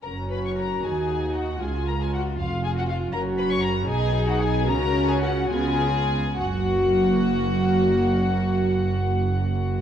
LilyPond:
<<
  \new Staff \with { instrumentName = "Violin section" } { \time 6/8 \key fis \major \tempo 4. = 75 ais''8 b''16 cis'''16 ais''8 gis''4 fis''8 | gis''8 ais''16 gis''16 fis''8 eis''8 gis''16 fis''16 eis''8 | ais''8 b''16 cis'''16 ais''8 gis''8. fis''16 gis''8 | ais''8. gis''16 fis''8 gis''4. |
fis''2.~ | fis''2. | }
  \new Staff \with { instrumentName = "Violin section" } { \time 6/8 \key fis \major ais'8 b'16 cis''16 ais'8 gis'4 fis'8 | gis'8 ais'16 gis'16 fis'8 eis'8 gis'16 fis'16 eis'8 | ais'8 b'16 cis''16 ais'8 gis'8. fis'16 gis'8 | ais'8. gis'16 fis'8 gis'4. |
fis'2.~ | fis'2. | }
  \new Staff \with { instrumentName = "Viola section" } { \time 6/8 \key fis \major << { fis'2. | eis'2. | fis'4. gis'4. | fis'4. eis'4 r8 |
fis'2.~ | fis'2. | } \\ { cis'4. dis'4. | eis'2. | cis'4. dis'4. | cis'4. b4 r8 |
ais2.~ | ais2. | } >> }
  \new Staff \with { instrumentName = "Cello section" } { \clef bass \time 6/8 \key fis \major fis,4. dis,4. | cis,4. eis,4. | fis,4. b,4. | cis4. cis4 r8 |
fis,2.~ | fis,2. | }
  \new Staff \with { instrumentName = "Double bass section" } { \clef bass \time 6/8 \key fis \major fis,,4. dis,4. | cis,4. eis,,4. | fis,,4. b,,4. | cis,4. cis,4 r8 |
fis,,2.~ | fis,,2. | }
>>